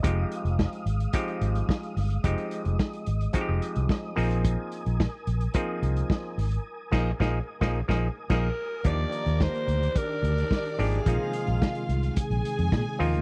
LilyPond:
<<
  \new Staff \with { instrumentName = "Alto saxophone" } { \time 4/4 \key bes \mixolydian \tempo 4 = 109 r1 | r1 | r1 | r2. bes'4 |
d''4 c''4 bes'4. aes'8~ | aes'4. r2 r8 | }
  \new Staff \with { instrumentName = "String section" } { \time 4/4 \key bes \mixolydian r1 | r1 | r1 | r1 |
<bes bes'>2 <d' d''>2 | <f' f''>2 <aes' aes''>2 | }
  \new Staff \with { instrumentName = "Tonewheel organ" } { \time 4/4 \key bes \mixolydian << { f''1 | ees''2.~ ees''8 aes''8~ | aes''1~ | aes''1 |
d''1 | aes1 | } \\ { ees'''1~ | ees'''1~ | ees'''1~ | ees'''1 |
g'1 | ees1 | } >> }
  \new Staff \with { instrumentName = "Tonewheel organ" } { \clef bass \time 4/4 \key bes \mixolydian aes1~ | aes2.~ aes8 bes'8~ | bes'1~ | bes'1 |
ees1 | c1 | }
  \new Staff \with { instrumentName = "Clav" } { \time 4/4 \key bes \mixolydian <f aes c' ees' g'>4. r8 <f aes c' ees' g'>4. r8 | <f aes c' ees' g'>4. r8 <f aes c' ees' ges' g'>4. <f bes c' ees' aes'>8~ | <f bes c' ees' aes'>4 r4 <f bes c' ees' aes'>4. r8 | r8 <f bes ees' aes'>8 <f bes ees' aes'>8 r16 <f bes ees' aes'>8 <f bes ees' aes'>8 r16 <f bes ees' aes'>8 r8 |
<f bes d' ees' g'>4. r2 <f bes d' ees' g'>8 | <f bes c' ees' aes'>4. r2 <f bes c' ees' f'>8 | }
  \new Staff \with { instrumentName = "Fingered electric bass" } { \clef bass \time 4/4 \key bes \mixolydian f,,8 r16 f,,8 r16 aes,,8 r8 aes,,8 r8 g,,8 | f,,16 r8 f,,16 r8 aes,,8 r16 f,,16 r16 c,16 r8 bes,,8~ | bes,,8 r16 bes,,8 r16 bes,,8 r8 c,8 r8 aes,,8 | r8 bes,,8 bes,,8 r16 bes,,8 bes,,8 r16 bes,,8 r8 |
ees,8 r16 ees,8 r16 d,8 r8 d,8 r8 aes,,8 | bes,,16 r8 bes,,16 r8 c,8 r16 bes,,16 r16 f,16 bes,16 r16 ees,16 d,16 | }
  \new DrumStaff \with { instrumentName = "Drums" } \drummode { \time 4/4 <hh bd>8 hh16 hh16 <bd sn>16 hh16 hh16 hh16 <hh bd>16 hh16 hh16 hh16 <bd sn>16 hh16 <hho sn>16 hh16 | <hh bd>16 hh16 hh16 hh16 <bd sn>16 hh16 hh16 hh16 <hh bd>8 hh16 hh16 <bd sn>8 <hho sn>16 hh16 | <hh bd>8 hh16 hh16 <bd sn>8 hh16 hh16 <hh bd>8 hh16 hh16 <bd sn>8 <hho sn>16 hh16 | r8 <cymc bd sn>8 <bd sn>8. <bd sn>16 r16 <bd sn>8. <cymc bd sn>4 |
<hh bd>8 hh16 hh16 <bd sn>16 hh16 hh16 hh16 <hh bd>8 hh16 hh16 <bd sn>16 hh16 <hho sn>16 hh16 | <hh bd>8 hh16 hh16 <bd sn>16 hh16 hh16 hh16 <hh bd>16 hh16 hh16 hh16 <bd sn>8 hho16 hh16 | }
>>